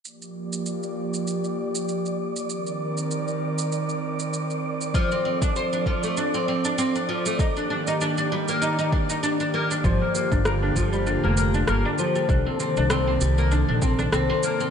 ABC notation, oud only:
X:1
M:4/4
L:1/16
Q:"Swing 16ths" 1/4=98
K:Gm
V:1 name="Oud"
z16 | z16 | F, C C D c D F, A, D C C D C D F, A, | E D D E D D G, B, E E D E D D B, D |
F, B, B, D B D F, G, D B, B, D B, D F, G, | D C C D C C G, B, D D C D C C B, C |]